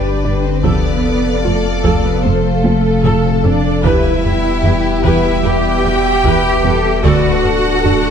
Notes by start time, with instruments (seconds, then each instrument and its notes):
Already playing: sub bass G1, analog synth pad D3 D4 G4 G5, cello section D4, viola section G4 D5, french horn section G4 D5, violin section B4 D5
0.24 double bass section G2, synth pluck D4, viola section G4 D5
0.43 cello section C4, violin section C5
0.64 sub bass F1, double bass section F2, analog synth pad C3 F3 A4 F5, synth pluck F3, cello section B3, viola section A4, french horn section A4 F5, violin section B4 D5, taiko
1.44 double bass section F2, cello section A3, viola section F4, synth pluck F4, violin section A4
1.84 double bass section F2, synth pluck F3, viola section A4, taiko
2.04 cello section B3, violin section B4
2.23 double bass section F2, cello section A3, synth pluck A3, viola section A4, violin section A4 C5
2.64 double bass section F2, synth pluck C4, viola section F4, violin section A4, taiko high
3.04 double bass section F2, synth pluck F3, viola section A4, taiko low-mid
3.44 double bass section F2, synth pluck C4, cello section D4, viola section A4, violin section D5, taiko low
3.84 sub bass E1, double bass section E2, synth pluck E3, analog synth pad G3 B3 B4 E5, cello section E4, viola section G4 B4, violin section B4 E5, french horn section B4 E5, taiko
4.23 violin section G4, taiko low
4.64 double bass section E2, viola section E4 G4, synth pluck E4, taiko low
5.04 double bass section E2, synth pluck E3, cello section E4, viola section G4 B4, violin section E5, taiko
5.45 double bass section E2, synth pluck G3, violin section E4 G5, viola section G4 B4, cello section G4
5.84 double bass section E2, viola section G3 E4, synth pluck B3, violin section F#4
6.24 double bass section E2, synth pluck E3, violin section G4, viola section G4 B4, taiko
6.64 double bass section E2, synth pluck B3, viola section G4 B4, violin section A4
7.04 sub bass D1, double bass section D2, synth pluck D3, analog synth pad A3 D4 A4 D5, cello section F#4, viola section A4 D5, violin section B4 F#5, french horn section D5, taiko
7.45 violin section A4, taiko low
7.84 double bass section D2, synth pluck D4, viola section F#4 A4, french horn section A4, taiko low